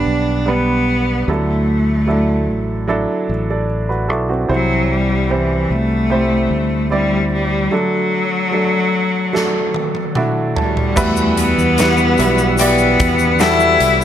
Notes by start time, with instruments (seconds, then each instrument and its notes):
Already playing: grand piano G2 G3 B3 D4 G4 B4, cello D4
0.06 fingered electric bass B1
0.46 grand piano G3 B3 D4 B4, cello B3
1.28 fingered electric bass D2, grand piano D3 F#3 D4 E4 A4, cello A3
2.07 grand piano F#3 D4 E4 A4
2.49 fingered electric bass A1
2.88 grand piano F#3 D4 E4 A4
3.29 fingered electric bass A1
3.50 grand piano A4 D5
3.89 grand piano F#4 B4
4.08 fingered electric bass B1, grand piano E4 A4
4.29 grand piano C4 F#4
4.48 fingered electric bass C2, grand piano C3 E3 C4 E4 C5, cello F#3
4.92 cello G3
5.29 cello E3, grand piano G3 C4 E4 C5
5.70 fingered electric bass C2, cello A3
6.10 grand piano G3 C4 E4 C5
6.51 fingered electric bass D2
6.90 grand piano G3 C4 E4 D5, cello G3
7.33 cello G3
7.71 grand piano D3 F#3 A3 D4 A4, cello F#3
8.51 grand piano F#3 A3 D4 A4
9.33 grand piano F#3 A3 D4 A4, snare
9.74 high tom
9.95 high tom
10.15 grand piano A3 D4 E4 F#4 D5, mid tom
10.56 cello G3, grand piano A5, floor tom
10.77 floor tom
10.96 fingered electric bass E2, grand piano E3 G3 E4 F#4 B4, clean electric guitar E3, tonewheel organ G3 F#5 E6, cello A3, kick, crash, shaker
11.17 shaker
11.37 clean electric guitar B3, cello B3, closed hi-hat, shaker
11.58 fingered electric bass E2, shaker
11.78 grand piano G3 E4 F#4 B4, clean electric guitar F#4, snare, closed hi-hat, shaker
11.97 shaker
12.18 fingered electric bass B1, grand piano G3 E4 F#4 B4, closed hi-hat, shaker
12.38 shaker
12.58 grand piano G3 E4 F#4 D5, cello B3, clean electric guitar G4, closed hi-hat, shaker
12.78 shaker
13.00 fingered electric bass E2, kick, closed hi-hat
13.19 shaker
13.39 grand piano G3 E4 F#4 A4, clean electric guitar B3 F#4 G4, cello E4, snare, closed hi-hat, shaker
13.60 shaker
13.80 fingered electric bass C2, clean electric guitar B3, closed hi-hat